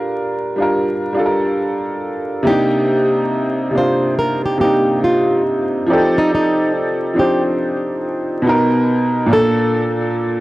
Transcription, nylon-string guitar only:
2.47 G4
3.78 C5
4.19 A#4
4.46 G4
4.61 G4
5.04 F4
6.18 D#4
6.35 D#4
7.19 G4
9.33 A4

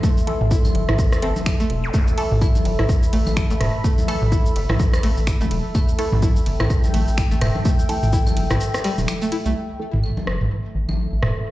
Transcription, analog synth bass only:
0.41 A1
0.75 G1
0.88 A1
1.22 G1
1.70 E1
2.32 A1
2.65 G1
2.79 A1
3.13 A1
3.27 A1
3.50 A1
3.60 E1
4.22 A1
4.56 G1
4.70 A1
5.03 A1
5.17 A1
5.41 A1
5.51 E1
6.12 A1
6.46 G1
6.60 A1
6.94 A1
7.08 A1
7.31 A1
7.41 E1
8.03 A1
8.37 G1
8.50 A1
8.98 E1
9.46 C2
9.93 A1
10.27 G1
10.41 A1
10.75 A1
10.89 A1
11.12 A1
11.22 E1

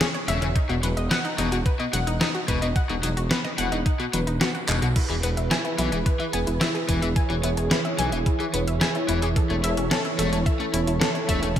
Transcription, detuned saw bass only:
0.28 E1
0.42 E1
0.69 E1
0.83 E1
0.97 E1
1.38 E1
1.52 E1
1.93 E1
2.07 E1
2.48 E1
2.62 E1
2.90 E1
3.03 E1
3.17 E1
3.58 E1
3.72 E1
4.13 E1
4.27 E1
4.68 E1
4.82 B1
5.10 E1
5.23 E1
5.37 E1
5.78 B1
5.92 E1
6.33 E1
6.47 E1
6.89 E1
7.02 E1
7.30 E1
7.44 E1
7.57 E1
7.99 B1
8.12 E1
8.54 E1
8.67 E1
9.09 E1
9.22 E1
9.50 E1
9.64 E1
9.77 E1
10.19 E1
10.32 E1
10.74 E1
10.87 E1
11.29 E1
11.42 E1

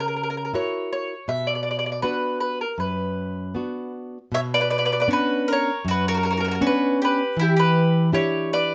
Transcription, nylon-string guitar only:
Already playing: C#3
0.54 E4 F#4 A#4
1.28 B2
2.03 B3 D4 F#4
2.78 F#2
3.55 B3 D4 F#4
4.32 B2
5.08 B3 C#4 D4
5.85 F#2
6.61 B3 C#4 D4
7.37 E3
8.12 D4 E4 G4

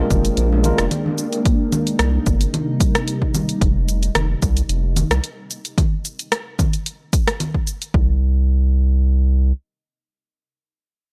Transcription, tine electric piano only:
Already playing: G#3 A#3 D4
0.00 F4 A#4
0.62 G#3 A#3 D4 F4
0.66 A#4

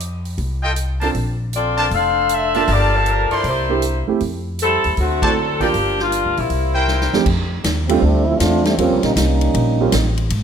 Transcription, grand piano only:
1.02 C4 D4 F4 A4
2.55 A#3 D4 F4 A4
3.69 A#3 D4 E4 G4
4.07 A3 C4 E4 G4
5.24 A3 C4 E4 F#4
5.60 A#3 D4 F4 A#4
7.13 F2 A3 C4 D4 G4
7.89 G3 A3 C4 D4 F4
8.79 G3 A#3 C4 C#4 F4
9.81 G3 A#3 C4 C#4 F4

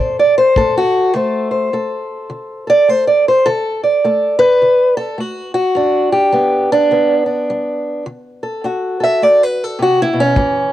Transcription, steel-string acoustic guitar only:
Already playing: A4
0.00 D3 C5
0.19 D5
0.38 C5
0.57 A3 A4
0.77 F#4
1.14 D3 A3 A4 C5
1.51 C5
1.73 A3 A4
2.30 D3
2.67 A4 D5
2.88 A3 C5
3.07 D5
3.28 C5
3.46 D3 A4
3.84 D5
4.04 A3 A4
4.39 B4
4.62 D3
4.97 A4
5.18 A3 F#4
5.54 F#4
5.75 G2 D4
6.12 G4
6.32 G3 B3
6.72 D4
6.91 D3 B3
7.26 D4
7.50 G3
8.06 D3
8.43 A4
8.64 D4 F#4
9.00 A4 E5
9.22 A3 D5
9.43 B4
9.64 A4
9.79 C3 F#4
10.02 E4
10.13 B2
10.20 C#4
10.37 A2 E3

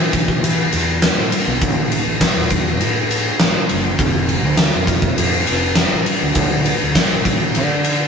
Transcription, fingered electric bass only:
0.00 E3
0.43 E3
0.73 E2
1.18 A2
1.47 B1
1.62 A1
2.07 A1
2.37 E2
2.82 A2
3.41 A1
3.71 F#1
3.99 F1
4.44 D2
4.75 F2
5.19 F2
5.49 F1
5.92 A1
6.23 D2
6.36 D2
6.83 D2
7.13 A1
7.57 D3

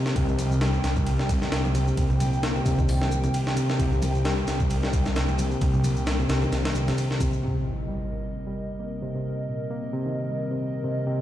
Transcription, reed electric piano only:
Already playing: A#2 C3 D#3 A#3
0.16 C3
0.61 G3
1.19 G3
1.52 A#3
1.75 C3
1.87 C3
2.20 A#2
2.43 A#3
2.56 C3
2.66 C3
2.79 D#3
3.01 G3
3.24 C3
3.56 C3
3.79 C3
4.25 G3
4.83 G3
5.16 A#3
5.38 C3
5.51 C3
5.84 A#2
6.07 A#3
6.19 C3
6.29 C3
6.42 D#3
6.65 G3
6.88 C3
7.20 C3
7.43 C3
7.88 G3
8.47 G3
8.80 A#3
9.02 C3
9.15 C3
9.48 A#2
9.71 A#3
9.83 C3
9.93 C3
10.06 D#3
10.29 G3
10.51 C3
10.84 C3
11.07 C3

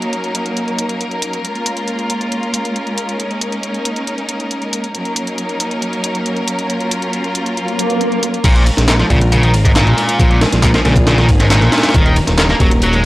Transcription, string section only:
Already playing: F#3 A#3 C#4 D#4 A#4
1.44 G#3 C#4 F4
3.19 D#4
4.95 F#3 A#3 C#4 D#4 A#4
6.70 F4
8.44 G#3 A#3 C#4 F4 A#4
10.21 G#4
11.94 F#3 D#4 A#4

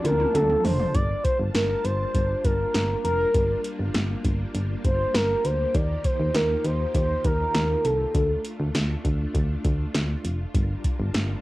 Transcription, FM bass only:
0.04 D2
0.35 D2
0.65 F1
0.95 G1
1.39 G1
1.55 G1
1.85 G1
2.15 G1
2.45 G1
2.75 G1
3.04 F1
3.35 G1
3.80 G1
3.95 G1
4.25 G1
4.55 G1
4.85 G1
5.14 G1
5.45 D2
5.75 D#2
6.20 D#2
6.35 D#2
6.65 D#2
6.95 D#2
7.25 D#2
7.55 D#2
7.85 C2
8.15 D2
8.60 D2
8.75 D2
9.05 D2
9.35 D2
9.65 D2
9.95 D2
10.25 F1
10.55 G1
11.00 G1
11.15 G1

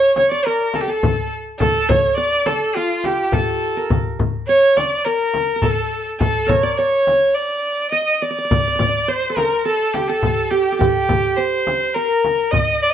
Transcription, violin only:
Already playing: C#5
0.17 C#5
0.31 D5
0.46 A#4
0.75 A4
0.81 G4
0.89 A4
1.59 A4
1.89 C#5
2.17 D5
2.47 A4
2.76 F4
3.04 G4
3.33 A4
4.48 C#5
4.77 D5
5.05 A#4
5.62 A4
6.21 A4
6.48 C#5
6.63 D5
6.77 C#5
7.35 D5
7.92 D#5
8.15 D#5
8.21 D5
9.09 C5
9.37 A#4
9.67 A4
9.94 G4
10.08 A4
10.50 G4
10.80 G4
11.37 C5
11.94 A#4
12.51 D#5
12.82 D5
12.90 D#5

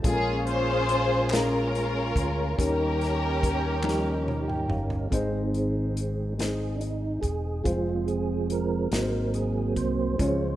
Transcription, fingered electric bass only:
0.04 A#1
2.16 D2
2.59 D#2
4.69 G1
5.12 G#1
7.22 E1
7.65 F1
8.91 G#1
9.76 C2
10.19 C#2

